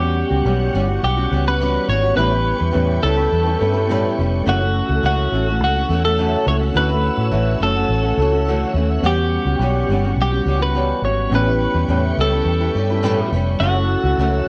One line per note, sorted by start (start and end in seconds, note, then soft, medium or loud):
0.00 0.23 E2 loud
0.00 2.16 G3 medium
0.00 1.27 B3 medium
0.00 1.28 C#4 medium
0.00 0.30 C#4 soft
0.00 0.29 F#4 medium
0.00 1.03 G4 medium
0.00 1.30 G4 medium
0.00 1.29 F#5 medium
0.00 2.16 F#5 medium
0.00 4.43 C#6 medium
0.04 0.32 G3 soft
0.30 0.43 C#2 medium
0.30 0.45 G3 soft
0.30 0.45 C#4 medium
0.30 0.45 F#4 medium
0.45 0.69 B1 loud
0.45 0.72 E3 medium
0.45 0.73 G3 medium
0.45 0.74 C#4 medium
0.45 0.75 F#4 medium
0.73 0.97 G1 medium
0.73 0.88 E3 medium
0.73 0.89 G3 medium
0.73 0.88 C#4 medium
0.73 0.86 F#4 medium
0.88 1.19 G3 soft
0.88 1.17 C#4 soft
0.88 1.16 F#4 medium
1.03 1.26 B1 loud
1.03 1.44 G4 medium
1.17 1.31 G3 soft
1.17 1.32 C#4 medium
1.17 1.32 F#4 medium
1.31 1.77 C#2 loud
1.31 1.46 E3 medium
1.31 1.47 G3 medium
1.31 2.13 B3 medium
1.31 2.14 C#4 soft
1.31 1.46 C#4 medium
1.31 2.18 F#4 soft
1.31 1.44 F#4 medium
1.31 2.19 G4 medium
1.45 1.60 G3 soft
1.45 1.61 C#4 medium
1.45 1.60 F#4 soft
1.45 1.89 B4 loud
1.60 1.87 E3 medium
1.60 1.89 G3 medium
1.60 1.90 C#4 medium
1.60 1.90 F#4 medium
1.88 2.12 G#1 loud
1.88 2.03 E3 medium
1.88 2.04 G3 medium
1.88 2.04 C#4 medium
1.88 2.01 F#4 medium
1.88 2.16 C#5 medium
2.03 2.16 G3 soft
2.03 2.17 C#4 soft
2.03 2.17 F#4 medium
2.14 2.52 A1 loud
2.14 2.32 A2 medium
2.14 2.32 E3 medium
2.14 2.32 G3 medium
2.14 3.84 B3 medium
2.14 3.85 C#4 medium
2.14 2.32 C#4 medium
2.14 3.86 E4 medium
2.14 3.03 B4 loud
2.14 4.44 B4 medium
2.14 4.44 G5 medium
2.19 2.31 E4 medium
2.19 3.87 G4 medium
2.19 2.30 B4 medium
2.31 2.61 G3 soft
2.31 2.60 C#4 medium
2.31 2.58 E4 soft
2.31 2.57 B4 medium
2.58 2.72 E2 medium
2.58 2.73 G3 soft
2.58 2.73 C#4 soft
2.58 2.73 E4 medium
2.58 2.74 B4 medium
2.72 2.98 E2 loud
2.72 3.02 A2 medium
2.72 3.02 E3 medium
2.72 3.01 G3 medium
2.72 3.02 C#4 medium
2.72 3.03 E4 medium
2.72 3.04 B4 loud
3.02 3.26 C#2 loud
3.02 3.17 G3 medium
3.02 3.17 C#4 medium
3.02 3.17 E4 medium
3.02 4.14 A4 medium
3.02 3.16 B4 medium
3.17 3.47 G3 soft
3.17 3.47 C#4 soft
3.17 3.46 E4 medium
3.17 3.44 B4 medium
3.32 3.55 E2 medium
3.45 3.58 G3 soft
3.45 3.59 C#4 soft
3.45 3.60 E4 soft
3.45 3.60 B4 medium
3.59 4.07 G2 medium
3.59 3.74 G3 medium
3.59 3.74 C#4 medium
3.59 3.73 E4 medium
3.59 3.72 B4 medium
3.73 3.89 G3 medium
3.73 3.89 C#4 medium
3.73 3.89 E4 medium
3.73 3.88 B4 medium
3.87 4.18 A2 medium
3.87 4.18 E3 medium
3.87 4.16 G3 loud
3.87 4.45 B3 medium
3.87 4.44 C#4 medium
3.87 4.17 C#4 medium
3.87 4.46 E4 medium
3.87 4.19 E4 medium
3.87 4.47 G4 medium
3.87 4.19 B4 loud
4.17 4.41 F1 medium
4.17 4.46 G3 medium
4.17 4.47 C#4 medium
4.17 4.48 E4 medium
4.17 4.48 B4 medium
4.44 4.81 F#1 loud
4.44 4.60 F#2 medium
4.44 4.61 C#3 medium
4.44 4.61 E3 medium
4.44 6.41 A3 medium
4.44 4.61 A3 medium
4.44 6.42 C#4 medium
4.44 6.43 E4 medium
4.44 6.73 A4 medium
4.44 9.00 E6 medium
4.48 4.61 C#4 medium
4.48 4.60 F#4 loud
4.48 6.44 F#4 medium
4.48 5.05 F#4 medium
4.48 11.29 F#5 medium
4.61 4.91 E3 medium
4.61 4.90 A3 soft
4.61 4.90 C#4 medium
4.61 4.88 F#4 medium
4.89 5.01 C#2 medium
4.89 5.03 E3 medium
4.89 5.03 A3 medium
4.89 5.04 C#4 soft
4.89 5.03 F#4 medium
5.03 5.26 C#2 loud
5.03 5.32 F#2 medium
5.03 5.32 C#3 medium
5.03 5.31 E3 medium
5.03 5.32 A3 medium
5.03 5.33 C#4 medium
5.03 5.33 F#4 loud
5.03 5.63 F#4 loud
5.32 5.60 A1 loud
5.32 5.46 E3 medium
5.32 5.47 A3 medium
5.32 5.48 C#4 medium
5.32 5.47 F#4 medium
5.48 5.77 E3 soft
5.48 5.77 A3 medium
5.48 5.76 C#4 medium
5.48 5.75 F#4 medium
5.60 5.83 C#2 loud
5.60 6.05 F#4 medium
5.76 5.89 E3 soft
5.76 5.90 A3 soft
5.76 5.91 C#4 medium
5.76 5.90 F#4 medium
5.89 6.35 E2 loud
5.89 6.04 E3 medium
5.89 6.04 A3 medium
5.89 6.03 C#4 medium
5.89 6.03 F#4 medium
6.04 6.18 E3 soft
6.04 6.18 A3 soft
6.04 6.18 C#4 medium
6.04 6.18 F#4 medium
6.04 6.48 A4 loud
6.18 6.46 F#2 medium
6.18 6.47 C#3 medium
6.18 6.44 E3 medium
6.18 6.46 A3 medium
6.18 6.46 C#4 medium
6.18 6.47 F#4 medium
6.44 6.69 C#2 loud
6.44 6.60 E3 medium
6.44 6.70 A3 medium
6.44 6.61 A3 medium
6.44 6.71 C#4 medium
6.44 6.59 C#4 medium
6.44 6.74 E4 medium
6.44 6.58 F#4 medium
6.44 6.76 A4 medium
6.44 6.56 C#5 loud
6.59 6.74 E3 soft
6.59 6.74 A3 soft
6.59 6.75 C#4 medium
6.59 6.74 F#4 soft
6.71 7.09 D2 loud
6.71 6.89 D3 medium
6.71 8.98 A3 medium
6.71 8.98 C#4 medium
6.75 6.89 E3 medium
6.75 6.90 A3 medium
6.75 6.89 C#4 medium
6.75 9.00 E4 medium
6.75 9.00 F#4 medium
6.75 6.88 F#4 medium
6.75 7.63 B4 loud
6.75 9.02 C#5 medium
6.89 7.19 A3 soft
6.89 7.18 C#4 soft
6.89 7.15 F#4 medium
7.17 7.33 A2 medium
7.17 7.31 A3 soft
7.17 7.31 C#4 soft
7.17 7.32 F#4 medium
7.31 7.55 A1 medium
7.31 7.60 D3 medium
7.31 7.59 E3 medium
7.31 7.61 A3 medium
7.31 7.61 C#4 medium
7.31 7.61 F#4 medium
7.60 7.84 F#1 medium
7.60 7.75 E3 medium
7.60 7.76 A3 medium
7.60 7.76 C#4 medium
7.60 8.72 A4 medium
7.65 7.74 F#4 medium
7.75 8.05 A3 soft
7.75 8.04 C#4 medium
7.75 8.02 F#4 medium
7.89 8.12 A1 medium
8.03 8.18 A3 soft
8.03 8.19 C#4 medium
8.03 8.18 F#4 medium
8.17 8.63 C#2 medium
8.17 8.33 E3 medium
8.17 8.33 A3 medium
8.17 8.33 C#4 medium
8.22 8.31 F#4 medium
8.32 8.48 A3 soft
8.32 8.47 C#4 medium
8.32 8.46 F#4 medium
8.48 8.76 D3 medium
8.48 8.73 E3 medium
8.48 8.75 A3 medium
8.48 8.75 C#4 medium
8.48 8.77 F#4 loud
8.74 8.97 D#2 loud
8.74 9.01 E3 medium
8.74 9.04 A3 medium
8.74 9.03 C#4 medium
8.78 9.04 F#4 medium
9.00 9.37 E2 loud
9.00 9.17 E3 medium
9.00 9.18 G3 medium
9.00 10.70 B3 medium
9.00 10.71 C#4 medium
9.00 10.72 F#5 medium
9.05 11.30 G3 medium
9.05 9.18 C#4 medium
9.05 9.16 F#4 medium
9.05 10.73 G4 medium
9.05 10.15 G4 medium
9.05 13.57 C#6 medium
9.18 9.48 G3 soft
9.18 9.47 C#4 soft
9.18 9.45 F#4 medium
9.45 9.57 C#2 medium
9.45 9.60 C#4 soft
9.45 9.61 F#4 medium
9.49 9.60 G3 soft
9.59 9.83 B1 medium
9.59 9.89 E3 medium
9.59 9.90 G3 medium
9.59 9.90 C#4 medium
9.59 9.90 F#4 medium
9.89 10.12 G1 medium
9.89 10.04 E3 medium
9.89 10.05 G3 medium
9.89 10.05 C#4 medium
9.93 10.04 F#4 medium
10.05 10.34 G3 soft
10.05 10.32 C#4 medium
10.05 10.30 F#4 medium
10.16 10.40 B1 loud
10.22 10.60 G4 medium
10.31 10.47 G3 soft
10.31 10.47 C#4 soft
10.31 10.46 F#4 medium
10.46 10.92 C#2 medium
10.46 10.61 E3 medium
10.46 10.62 G3 medium
10.46 10.60 C#4 medium
10.50 10.58 F#4 medium
10.59 10.75 G3 soft
10.59 10.75 C#4 soft
10.59 10.74 F#4 medium
10.59 11.02 B4 loud
10.74 11.02 E3 medium
10.74 11.04 G3 medium
10.74 11.28 B3 soft
10.74 11.31 C#4 soft
10.74 11.05 C#4 medium
10.74 11.33 F#4 medium
10.74 11.05 F#4 medium
10.74 11.33 G4 medium
11.02 11.26 G#1 medium
11.02 11.31 E3 medium
11.02 11.31 G3 medium
11.02 11.34 C#5 medium
11.06 11.32 C#4 medium
11.06 11.33 F#4 medium
11.30 11.66 A1 loud
11.30 11.46 A2 medium
11.30 11.47 E3 medium
11.30 11.47 G3 medium
11.30 13.56 B3 medium
11.30 13.57 C#4 medium
11.30 11.47 C#4 medium
11.30 11.46 E4 medium
11.30 13.59 B4 medium
11.30 13.59 G5 medium
11.34 13.58 E4 medium
11.34 11.40 F#4 medium
11.34 11.45 B4 medium
11.34 12.21 B4 loud
11.41 13.61 G4 medium
11.46 11.76 G3 soft
11.46 11.75 C#4 medium
11.46 11.74 E4 medium
11.46 11.72 B4 medium
11.74 11.86 E2 medium
11.74 11.89 C#4 medium
11.74 11.89 E4 medium
11.74 11.89 B4 medium
11.78 11.88 G3 soft
11.88 12.12 E2 loud
11.88 12.17 A2 medium
11.88 12.18 E3 medium
11.88 12.17 G3 medium
11.88 12.18 C#4 medium
11.88 12.19 E4 medium
11.88 12.19 B4 medium
12.17 12.40 C#2 medium
12.17 12.32 G3 medium
12.17 12.33 C#4 medium
12.17 12.32 E4 medium
12.17 13.30 A4 medium
12.17 12.31 B4 medium
12.32 12.62 G3 soft
12.32 12.60 C#4 medium
12.32 12.59 E4 soft
12.32 12.59 B4 medium
12.45 12.68 E2 medium
12.60 12.74 G3 medium
12.60 12.75 C#4 soft
12.60 12.75 E4 medium
12.60 12.75 B4 medium
12.75 13.21 G2 medium
12.75 12.89 G3 medium
12.75 12.90 C#4 medium
12.75 12.90 E4 medium
12.75 12.88 B4 medium
12.90 13.02 G3 soft
12.90 13.02 C#4 medium
12.90 13.03 E4 medium
12.90 13.04 B4 medium
13.02 13.32 A2 loud
13.02 13.32 E3 loud
13.02 13.31 G3 loud
13.02 13.32 C#4 loud
13.02 13.33 E4 loud
13.02 13.33 B4 loud
13.32 13.55 F1 medium
13.32 13.61 G3 medium
13.32 13.61 C#4 medium
13.32 13.62 E4 medium
13.32 13.63 B4 medium
13.58 13.95 F#1 loud
13.58 13.75 F#2 loud
13.58 13.75 C#3 medium
13.58 13.66 G3 medium
13.58 14.48 C#4 medium
13.58 14.48 E4 medium
13.58 14.48 F#4 medium
13.58 14.48 A4 medium
13.58 14.48 F#5 medium
13.58 14.48 E6 medium
13.62 13.76 E3 medium
13.62 13.76 A3 loud
13.62 14.48 A3 medium
13.62 13.76 C#4 loud
13.62 13.75 F#4 medium
13.62 14.48 F#4 medium
13.76 14.06 E3 soft
13.76 14.05 A3 medium
13.76 14.05 C#4 soft
13.76 14.03 F#4 medium
14.04 14.15 C#2 medium
14.04 14.18 E3 soft
14.04 14.19 A3 soft
14.04 14.19 C#4 medium
14.04 14.18 F#4 medium
14.18 14.41 C#2 loud
14.18 14.47 F#2 medium
14.18 14.47 C#3 medium
14.18 14.45 E3 medium
14.18 14.46 A3 medium
14.18 14.47 C#4 medium
14.18 14.48 F#4 loud